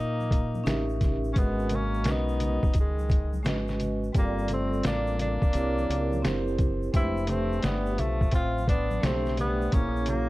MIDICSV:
0, 0, Header, 1, 6, 480
1, 0, Start_track
1, 0, Tempo, 697674
1, 934, Time_signature, 4, 2, 24, 8
1, 7080, End_track
2, 0, Start_track
2, 0, Title_t, "Vibraphone"
2, 0, Program_c, 0, 11
2, 437, Note_on_c, 0, 61, 89
2, 446, Note_on_c, 0, 63, 76
2, 452, Note_on_c, 0, 67, 83
2, 457, Note_on_c, 0, 70, 78
2, 465, Note_on_c, 0, 76, 96
2, 873, Note_off_c, 0, 61, 0
2, 878, Note_off_c, 0, 63, 0
2, 881, Note_off_c, 0, 67, 0
2, 883, Note_off_c, 0, 70, 0
2, 887, Note_off_c, 0, 76, 0
2, 922, Note_on_c, 0, 56, 73
2, 929, Note_on_c, 0, 61, 64
2, 936, Note_on_c, 0, 66, 71
2, 940, Note_on_c, 0, 70, 64
2, 947, Note_on_c, 0, 75, 75
2, 1763, Note_off_c, 0, 56, 0
2, 1767, Note_off_c, 0, 61, 0
2, 1771, Note_off_c, 0, 66, 0
2, 1772, Note_off_c, 0, 70, 0
2, 1776, Note_off_c, 0, 75, 0
2, 2359, Note_on_c, 0, 56, 70
2, 2366, Note_on_c, 0, 61, 60
2, 2371, Note_on_c, 0, 66, 66
2, 2376, Note_on_c, 0, 71, 68
2, 2386, Note_on_c, 0, 75, 75
2, 2795, Note_off_c, 0, 56, 0
2, 2798, Note_off_c, 0, 61, 0
2, 2800, Note_off_c, 0, 66, 0
2, 2803, Note_off_c, 0, 71, 0
2, 2808, Note_off_c, 0, 75, 0
2, 2838, Note_on_c, 0, 55, 67
2, 2843, Note_on_c, 0, 60, 67
2, 2848, Note_on_c, 0, 65, 62
2, 2858, Note_on_c, 0, 69, 69
2, 2862, Note_on_c, 0, 74, 77
2, 3681, Note_off_c, 0, 55, 0
2, 3684, Note_off_c, 0, 60, 0
2, 3687, Note_off_c, 0, 65, 0
2, 3691, Note_off_c, 0, 69, 0
2, 3693, Note_off_c, 0, 74, 0
2, 3801, Note_on_c, 0, 60, 79
2, 3810, Note_on_c, 0, 64, 70
2, 3813, Note_on_c, 0, 67, 63
2, 3819, Note_on_c, 0, 70, 72
2, 3825, Note_on_c, 0, 73, 79
2, 4235, Note_off_c, 0, 60, 0
2, 4240, Note_off_c, 0, 64, 0
2, 4241, Note_off_c, 0, 67, 0
2, 4244, Note_off_c, 0, 70, 0
2, 4247, Note_off_c, 0, 73, 0
2, 4281, Note_on_c, 0, 60, 82
2, 4288, Note_on_c, 0, 64, 87
2, 4293, Note_on_c, 0, 67, 83
2, 4300, Note_on_c, 0, 70, 80
2, 4307, Note_on_c, 0, 72, 104
2, 4715, Note_off_c, 0, 60, 0
2, 4719, Note_off_c, 0, 64, 0
2, 4721, Note_off_c, 0, 67, 0
2, 4725, Note_off_c, 0, 70, 0
2, 4728, Note_off_c, 0, 72, 0
2, 4764, Note_on_c, 0, 56, 60
2, 4770, Note_on_c, 0, 62, 61
2, 4775, Note_on_c, 0, 67, 72
2, 4782, Note_on_c, 0, 71, 62
2, 4785, Note_on_c, 0, 76, 85
2, 4808, Note_on_c, 0, 57, 71
2, 4828, Note_off_c, 0, 56, 0
2, 5608, Note_off_c, 0, 62, 0
2, 5610, Note_off_c, 0, 67, 0
2, 5613, Note_off_c, 0, 71, 0
2, 5615, Note_off_c, 0, 76, 0
2, 5626, Note_off_c, 0, 57, 0
2, 6196, Note_on_c, 0, 57, 72
2, 6207, Note_on_c, 0, 62, 69
2, 6213, Note_on_c, 0, 67, 68
2, 6217, Note_on_c, 0, 72, 69
2, 6223, Note_on_c, 0, 76, 73
2, 6633, Note_off_c, 0, 57, 0
2, 6638, Note_off_c, 0, 62, 0
2, 6641, Note_off_c, 0, 67, 0
2, 6643, Note_off_c, 0, 72, 0
2, 6646, Note_off_c, 0, 76, 0
2, 6683, Note_on_c, 0, 58, 75
2, 6686, Note_on_c, 0, 61, 66
2, 6692, Note_on_c, 0, 64, 65
2, 6701, Note_on_c, 0, 68, 67
2, 6705, Note_on_c, 0, 73, 76
2, 7080, Note_off_c, 0, 58, 0
2, 7080, Note_off_c, 0, 61, 0
2, 7080, Note_off_c, 0, 64, 0
2, 7080, Note_off_c, 0, 68, 0
2, 7080, Note_off_c, 0, 73, 0
2, 7080, End_track
3, 0, Start_track
3, 0, Title_t, "Tenor saxophone"
3, 0, Program_c, 1, 66
3, 0, Note_on_c, 1, 63, 97
3, 667, Note_off_c, 1, 63, 0
3, 916, Note_on_c, 1, 61, 74
3, 950, Note_on_c, 1, 59, 88
3, 960, Note_off_c, 1, 61, 0
3, 1204, Note_on_c, 1, 61, 93
3, 1214, Note_off_c, 1, 59, 0
3, 1456, Note_on_c, 1, 63, 97
3, 1467, Note_off_c, 1, 61, 0
3, 1915, Note_off_c, 1, 63, 0
3, 1925, Note_on_c, 1, 56, 82
3, 2362, Note_off_c, 1, 56, 0
3, 2878, Note_on_c, 1, 58, 90
3, 3090, Note_off_c, 1, 58, 0
3, 3118, Note_on_c, 1, 60, 92
3, 3330, Note_off_c, 1, 60, 0
3, 3351, Note_on_c, 1, 62, 100
3, 3566, Note_off_c, 1, 62, 0
3, 3586, Note_on_c, 1, 62, 97
3, 4512, Note_off_c, 1, 62, 0
3, 4790, Note_on_c, 1, 64, 97
3, 5018, Note_on_c, 1, 60, 93
3, 5028, Note_off_c, 1, 64, 0
3, 5261, Note_on_c, 1, 59, 90
3, 5271, Note_off_c, 1, 60, 0
3, 5500, Note_on_c, 1, 57, 92
3, 5510, Note_off_c, 1, 59, 0
3, 5737, Note_off_c, 1, 57, 0
3, 5745, Note_on_c, 1, 65, 107
3, 5963, Note_off_c, 1, 65, 0
3, 5978, Note_on_c, 1, 62, 101
3, 6229, Note_on_c, 1, 60, 94
3, 6240, Note_off_c, 1, 62, 0
3, 6461, Note_off_c, 1, 60, 0
3, 6468, Note_on_c, 1, 59, 92
3, 6699, Note_on_c, 1, 61, 88
3, 6709, Note_off_c, 1, 59, 0
3, 6946, Note_on_c, 1, 58, 84
3, 6956, Note_off_c, 1, 61, 0
3, 7080, Note_off_c, 1, 58, 0
3, 7080, End_track
4, 0, Start_track
4, 0, Title_t, "Trombone"
4, 0, Program_c, 2, 57
4, 0, Note_on_c, 2, 58, 88
4, 666, Note_off_c, 2, 58, 0
4, 903, Note_on_c, 2, 58, 56
4, 938, Note_on_c, 2, 56, 82
4, 948, Note_off_c, 2, 58, 0
4, 1186, Note_on_c, 2, 58, 74
4, 1196, Note_off_c, 2, 56, 0
4, 1429, Note_on_c, 2, 59, 95
4, 1440, Note_off_c, 2, 58, 0
4, 1901, Note_off_c, 2, 59, 0
4, 1904, Note_on_c, 2, 51, 64
4, 2351, Note_off_c, 2, 51, 0
4, 2859, Note_on_c, 2, 55, 82
4, 3080, Note_off_c, 2, 55, 0
4, 3097, Note_on_c, 2, 57, 67
4, 3319, Note_off_c, 2, 57, 0
4, 3330, Note_on_c, 2, 58, 85
4, 3555, Note_off_c, 2, 58, 0
4, 3567, Note_on_c, 2, 58, 97
4, 4503, Note_off_c, 2, 58, 0
4, 4766, Note_on_c, 2, 60, 89
4, 5007, Note_on_c, 2, 57, 79
4, 5017, Note_off_c, 2, 60, 0
4, 5239, Note_on_c, 2, 55, 82
4, 5250, Note_off_c, 2, 57, 0
4, 5471, Note_on_c, 2, 53, 77
4, 5482, Note_off_c, 2, 55, 0
4, 5716, Note_off_c, 2, 53, 0
4, 5720, Note_on_c, 2, 60, 85
4, 5949, Note_off_c, 2, 60, 0
4, 5967, Note_on_c, 2, 59, 84
4, 6204, Note_on_c, 2, 57, 80
4, 6215, Note_off_c, 2, 59, 0
4, 6449, Note_off_c, 2, 57, 0
4, 6454, Note_on_c, 2, 55, 79
4, 6696, Note_on_c, 2, 58, 84
4, 6706, Note_off_c, 2, 55, 0
4, 6939, Note_on_c, 2, 54, 69
4, 6950, Note_off_c, 2, 58, 0
4, 7080, Note_off_c, 2, 54, 0
4, 7080, End_track
5, 0, Start_track
5, 0, Title_t, "Fingered electric bass"
5, 0, Program_c, 3, 33
5, 0, Note_on_c, 3, 46, 96
5, 433, Note_off_c, 3, 46, 0
5, 455, Note_on_c, 3, 33, 82
5, 910, Note_off_c, 3, 33, 0
5, 936, Note_on_c, 3, 32, 98
5, 1415, Note_off_c, 3, 32, 0
5, 1415, Note_on_c, 3, 35, 93
5, 1793, Note_off_c, 3, 35, 0
5, 1889, Note_on_c, 3, 37, 91
5, 2372, Note_off_c, 3, 37, 0
5, 2372, Note_on_c, 3, 32, 83
5, 2829, Note_off_c, 3, 32, 0
5, 2852, Note_on_c, 3, 31, 97
5, 3309, Note_off_c, 3, 31, 0
5, 3336, Note_on_c, 3, 33, 87
5, 3713, Note_off_c, 3, 33, 0
5, 3817, Note_on_c, 3, 36, 109
5, 4043, Note_off_c, 3, 36, 0
5, 4056, Note_on_c, 3, 37, 107
5, 4283, Note_off_c, 3, 37, 0
5, 4296, Note_on_c, 3, 30, 79
5, 4751, Note_off_c, 3, 30, 0
5, 4773, Note_on_c, 3, 29, 107
5, 5229, Note_off_c, 3, 29, 0
5, 5253, Note_on_c, 3, 31, 84
5, 5481, Note_off_c, 3, 31, 0
5, 5497, Note_on_c, 3, 35, 88
5, 5724, Note_off_c, 3, 35, 0
5, 5730, Note_on_c, 3, 33, 91
5, 6188, Note_off_c, 3, 33, 0
5, 6215, Note_on_c, 3, 35, 90
5, 6670, Note_off_c, 3, 35, 0
5, 6693, Note_on_c, 3, 34, 88
5, 7080, Note_off_c, 3, 34, 0
5, 7080, End_track
6, 0, Start_track
6, 0, Title_t, "Drums"
6, 141, Note_on_c, 9, 63, 42
6, 141, Note_on_c, 9, 82, 40
6, 210, Note_off_c, 9, 63, 0
6, 210, Note_off_c, 9, 82, 0
6, 212, Note_on_c, 9, 36, 89
6, 221, Note_on_c, 9, 42, 80
6, 221, Note_on_c, 9, 82, 44
6, 281, Note_off_c, 9, 36, 0
6, 290, Note_off_c, 9, 42, 0
6, 290, Note_off_c, 9, 82, 0
6, 377, Note_on_c, 9, 63, 64
6, 377, Note_on_c, 9, 82, 43
6, 445, Note_off_c, 9, 63, 0
6, 445, Note_off_c, 9, 82, 0
6, 455, Note_on_c, 9, 63, 61
6, 455, Note_on_c, 9, 82, 61
6, 461, Note_on_c, 9, 38, 109
6, 464, Note_on_c, 9, 42, 81
6, 524, Note_off_c, 9, 63, 0
6, 524, Note_off_c, 9, 82, 0
6, 530, Note_off_c, 9, 38, 0
6, 533, Note_off_c, 9, 42, 0
6, 616, Note_on_c, 9, 82, 39
6, 685, Note_off_c, 9, 82, 0
6, 694, Note_on_c, 9, 42, 55
6, 695, Note_on_c, 9, 36, 81
6, 702, Note_on_c, 9, 38, 31
6, 702, Note_on_c, 9, 64, 65
6, 702, Note_on_c, 9, 82, 47
6, 763, Note_off_c, 9, 42, 0
6, 764, Note_off_c, 9, 36, 0
6, 771, Note_off_c, 9, 38, 0
6, 771, Note_off_c, 9, 64, 0
6, 771, Note_off_c, 9, 82, 0
6, 854, Note_on_c, 9, 82, 46
6, 923, Note_off_c, 9, 82, 0
6, 935, Note_on_c, 9, 36, 98
6, 935, Note_on_c, 9, 42, 87
6, 942, Note_on_c, 9, 82, 63
6, 1004, Note_off_c, 9, 36, 0
6, 1004, Note_off_c, 9, 42, 0
6, 1010, Note_off_c, 9, 82, 0
6, 1097, Note_on_c, 9, 82, 44
6, 1165, Note_off_c, 9, 82, 0
6, 1166, Note_on_c, 9, 42, 66
6, 1170, Note_on_c, 9, 64, 64
6, 1170, Note_on_c, 9, 82, 45
6, 1235, Note_off_c, 9, 42, 0
6, 1239, Note_off_c, 9, 64, 0
6, 1239, Note_off_c, 9, 82, 0
6, 1334, Note_on_c, 9, 82, 39
6, 1403, Note_off_c, 9, 82, 0
6, 1406, Note_on_c, 9, 42, 85
6, 1415, Note_on_c, 9, 38, 90
6, 1418, Note_on_c, 9, 82, 54
6, 1474, Note_off_c, 9, 42, 0
6, 1483, Note_off_c, 9, 38, 0
6, 1486, Note_off_c, 9, 82, 0
6, 1573, Note_on_c, 9, 82, 45
6, 1642, Note_off_c, 9, 82, 0
6, 1652, Note_on_c, 9, 42, 67
6, 1655, Note_on_c, 9, 64, 65
6, 1655, Note_on_c, 9, 82, 45
6, 1721, Note_off_c, 9, 42, 0
6, 1724, Note_off_c, 9, 64, 0
6, 1724, Note_off_c, 9, 82, 0
6, 1809, Note_on_c, 9, 36, 97
6, 1810, Note_on_c, 9, 82, 42
6, 1878, Note_off_c, 9, 36, 0
6, 1879, Note_off_c, 9, 82, 0
6, 1883, Note_on_c, 9, 42, 79
6, 1890, Note_on_c, 9, 36, 79
6, 1890, Note_on_c, 9, 82, 57
6, 1951, Note_off_c, 9, 42, 0
6, 1958, Note_off_c, 9, 82, 0
6, 1959, Note_off_c, 9, 36, 0
6, 2054, Note_on_c, 9, 63, 46
6, 2054, Note_on_c, 9, 82, 44
6, 2123, Note_off_c, 9, 63, 0
6, 2123, Note_off_c, 9, 82, 0
6, 2128, Note_on_c, 9, 82, 38
6, 2131, Note_on_c, 9, 36, 96
6, 2143, Note_on_c, 9, 42, 74
6, 2197, Note_off_c, 9, 82, 0
6, 2200, Note_off_c, 9, 36, 0
6, 2212, Note_off_c, 9, 42, 0
6, 2292, Note_on_c, 9, 63, 60
6, 2292, Note_on_c, 9, 82, 48
6, 2361, Note_off_c, 9, 63, 0
6, 2361, Note_off_c, 9, 82, 0
6, 2372, Note_on_c, 9, 63, 64
6, 2372, Note_on_c, 9, 82, 56
6, 2379, Note_on_c, 9, 38, 111
6, 2382, Note_on_c, 9, 42, 79
6, 2440, Note_off_c, 9, 63, 0
6, 2440, Note_off_c, 9, 82, 0
6, 2448, Note_off_c, 9, 38, 0
6, 2451, Note_off_c, 9, 42, 0
6, 2529, Note_on_c, 9, 82, 37
6, 2540, Note_on_c, 9, 38, 34
6, 2598, Note_off_c, 9, 82, 0
6, 2609, Note_off_c, 9, 38, 0
6, 2613, Note_on_c, 9, 42, 53
6, 2618, Note_on_c, 9, 64, 58
6, 2618, Note_on_c, 9, 82, 48
6, 2682, Note_off_c, 9, 42, 0
6, 2687, Note_off_c, 9, 64, 0
6, 2687, Note_off_c, 9, 82, 0
6, 2776, Note_on_c, 9, 82, 41
6, 2845, Note_off_c, 9, 82, 0
6, 2852, Note_on_c, 9, 42, 91
6, 2853, Note_on_c, 9, 36, 108
6, 2861, Note_on_c, 9, 82, 62
6, 2921, Note_off_c, 9, 36, 0
6, 2921, Note_off_c, 9, 42, 0
6, 2929, Note_off_c, 9, 82, 0
6, 3017, Note_on_c, 9, 82, 47
6, 3084, Note_on_c, 9, 42, 78
6, 3086, Note_off_c, 9, 82, 0
6, 3089, Note_on_c, 9, 64, 61
6, 3089, Note_on_c, 9, 82, 42
6, 3152, Note_off_c, 9, 42, 0
6, 3158, Note_off_c, 9, 64, 0
6, 3158, Note_off_c, 9, 82, 0
6, 3255, Note_on_c, 9, 82, 42
6, 3324, Note_off_c, 9, 82, 0
6, 3326, Note_on_c, 9, 42, 85
6, 3335, Note_on_c, 9, 38, 102
6, 3340, Note_on_c, 9, 82, 60
6, 3395, Note_off_c, 9, 42, 0
6, 3404, Note_off_c, 9, 38, 0
6, 3409, Note_off_c, 9, 82, 0
6, 3489, Note_on_c, 9, 82, 48
6, 3557, Note_off_c, 9, 82, 0
6, 3573, Note_on_c, 9, 42, 65
6, 3574, Note_on_c, 9, 64, 61
6, 3574, Note_on_c, 9, 82, 41
6, 3642, Note_off_c, 9, 42, 0
6, 3643, Note_off_c, 9, 64, 0
6, 3643, Note_off_c, 9, 82, 0
6, 3729, Note_on_c, 9, 36, 100
6, 3732, Note_on_c, 9, 82, 43
6, 3797, Note_off_c, 9, 36, 0
6, 3801, Note_off_c, 9, 82, 0
6, 3805, Note_on_c, 9, 42, 84
6, 3815, Note_on_c, 9, 82, 60
6, 3874, Note_off_c, 9, 42, 0
6, 3884, Note_off_c, 9, 82, 0
6, 3979, Note_on_c, 9, 63, 43
6, 3979, Note_on_c, 9, 82, 45
6, 4048, Note_off_c, 9, 63, 0
6, 4048, Note_off_c, 9, 82, 0
6, 4060, Note_on_c, 9, 82, 46
6, 4063, Note_on_c, 9, 42, 81
6, 4128, Note_off_c, 9, 82, 0
6, 4132, Note_off_c, 9, 42, 0
6, 4214, Note_on_c, 9, 63, 67
6, 4214, Note_on_c, 9, 82, 46
6, 4283, Note_off_c, 9, 63, 0
6, 4283, Note_off_c, 9, 82, 0
6, 4297, Note_on_c, 9, 38, 108
6, 4298, Note_on_c, 9, 63, 60
6, 4298, Note_on_c, 9, 82, 62
6, 4300, Note_on_c, 9, 42, 79
6, 4366, Note_off_c, 9, 38, 0
6, 4367, Note_off_c, 9, 63, 0
6, 4367, Note_off_c, 9, 82, 0
6, 4369, Note_off_c, 9, 42, 0
6, 4455, Note_on_c, 9, 82, 38
6, 4524, Note_off_c, 9, 82, 0
6, 4530, Note_on_c, 9, 42, 54
6, 4532, Note_on_c, 9, 36, 89
6, 4542, Note_on_c, 9, 64, 63
6, 4542, Note_on_c, 9, 82, 47
6, 4599, Note_off_c, 9, 42, 0
6, 4601, Note_off_c, 9, 36, 0
6, 4611, Note_off_c, 9, 64, 0
6, 4611, Note_off_c, 9, 82, 0
6, 4697, Note_on_c, 9, 82, 45
6, 4765, Note_off_c, 9, 82, 0
6, 4773, Note_on_c, 9, 36, 105
6, 4773, Note_on_c, 9, 42, 79
6, 4774, Note_on_c, 9, 82, 62
6, 4842, Note_off_c, 9, 36, 0
6, 4842, Note_off_c, 9, 42, 0
6, 4843, Note_off_c, 9, 82, 0
6, 4934, Note_on_c, 9, 82, 49
6, 5002, Note_off_c, 9, 82, 0
6, 5003, Note_on_c, 9, 42, 74
6, 5011, Note_on_c, 9, 64, 61
6, 5011, Note_on_c, 9, 82, 42
6, 5072, Note_off_c, 9, 42, 0
6, 5079, Note_off_c, 9, 64, 0
6, 5079, Note_off_c, 9, 82, 0
6, 5177, Note_on_c, 9, 82, 40
6, 5246, Note_off_c, 9, 82, 0
6, 5246, Note_on_c, 9, 42, 79
6, 5255, Note_on_c, 9, 38, 97
6, 5256, Note_on_c, 9, 82, 56
6, 5315, Note_off_c, 9, 42, 0
6, 5324, Note_off_c, 9, 38, 0
6, 5325, Note_off_c, 9, 82, 0
6, 5409, Note_on_c, 9, 82, 48
6, 5478, Note_off_c, 9, 82, 0
6, 5491, Note_on_c, 9, 42, 64
6, 5494, Note_on_c, 9, 64, 59
6, 5494, Note_on_c, 9, 82, 43
6, 5560, Note_off_c, 9, 42, 0
6, 5563, Note_off_c, 9, 64, 0
6, 5563, Note_off_c, 9, 82, 0
6, 5648, Note_on_c, 9, 36, 92
6, 5657, Note_on_c, 9, 82, 45
6, 5716, Note_off_c, 9, 36, 0
6, 5720, Note_on_c, 9, 42, 82
6, 5726, Note_off_c, 9, 82, 0
6, 5728, Note_on_c, 9, 36, 76
6, 5738, Note_on_c, 9, 82, 59
6, 5789, Note_off_c, 9, 42, 0
6, 5796, Note_off_c, 9, 36, 0
6, 5807, Note_off_c, 9, 82, 0
6, 5902, Note_on_c, 9, 63, 44
6, 5902, Note_on_c, 9, 82, 47
6, 5969, Note_on_c, 9, 36, 91
6, 5971, Note_off_c, 9, 63, 0
6, 5971, Note_off_c, 9, 82, 0
6, 5978, Note_on_c, 9, 42, 77
6, 5980, Note_on_c, 9, 82, 40
6, 6038, Note_off_c, 9, 36, 0
6, 6046, Note_off_c, 9, 42, 0
6, 6049, Note_off_c, 9, 82, 0
6, 6128, Note_on_c, 9, 63, 64
6, 6128, Note_on_c, 9, 82, 42
6, 6197, Note_off_c, 9, 63, 0
6, 6197, Note_off_c, 9, 82, 0
6, 6214, Note_on_c, 9, 63, 60
6, 6214, Note_on_c, 9, 82, 59
6, 6215, Note_on_c, 9, 38, 120
6, 6218, Note_on_c, 9, 42, 76
6, 6282, Note_off_c, 9, 63, 0
6, 6282, Note_off_c, 9, 82, 0
6, 6284, Note_off_c, 9, 38, 0
6, 6286, Note_off_c, 9, 42, 0
6, 6370, Note_on_c, 9, 82, 38
6, 6379, Note_on_c, 9, 38, 31
6, 6439, Note_off_c, 9, 82, 0
6, 6447, Note_off_c, 9, 38, 0
6, 6449, Note_on_c, 9, 42, 54
6, 6461, Note_on_c, 9, 64, 62
6, 6461, Note_on_c, 9, 82, 45
6, 6518, Note_off_c, 9, 42, 0
6, 6529, Note_off_c, 9, 64, 0
6, 6529, Note_off_c, 9, 82, 0
6, 6615, Note_on_c, 9, 82, 47
6, 6684, Note_off_c, 9, 82, 0
6, 6688, Note_on_c, 9, 42, 85
6, 6692, Note_on_c, 9, 36, 107
6, 6698, Note_on_c, 9, 82, 61
6, 6757, Note_off_c, 9, 42, 0
6, 6761, Note_off_c, 9, 36, 0
6, 6767, Note_off_c, 9, 82, 0
6, 6855, Note_on_c, 9, 82, 44
6, 6920, Note_on_c, 9, 42, 76
6, 6924, Note_off_c, 9, 82, 0
6, 6928, Note_on_c, 9, 64, 59
6, 6928, Note_on_c, 9, 82, 44
6, 6989, Note_off_c, 9, 42, 0
6, 6997, Note_off_c, 9, 64, 0
6, 6997, Note_off_c, 9, 82, 0
6, 7080, End_track
0, 0, End_of_file